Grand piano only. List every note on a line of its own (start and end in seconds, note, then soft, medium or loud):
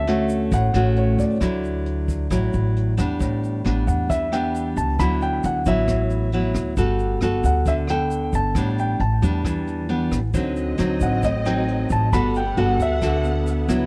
0.00 0.50 E5 loud
0.54 0.99 F#5 loud
0.97 1.21 C#5 medium
1.20 2.94 D5 medium
3.87 4.08 F#5 medium
4.10 4.33 E5 medium
4.33 4.78 G5 medium
4.77 5.00 A5 medium
5.00 5.22 B5 loud
5.22 5.45 G5 medium
5.46 5.65 F#5 medium
5.68 6.52 E5 medium
7.45 7.66 F#5 medium
7.68 7.73 E5 medium
7.90 8.35 G5 medium
8.35 8.80 A5 medium
8.80 9.00 G5 medium
9.00 9.86 A5 medium
11.02 11.23 F#5 medium
11.25 11.47 D#5 medium
11.46 11.92 G5 medium
11.92 12.14 A5 medium
12.13 12.34 B5 loud
12.37 12.57 G5 medium
12.59 12.79 F#5 medium
12.82 13.66 E5 medium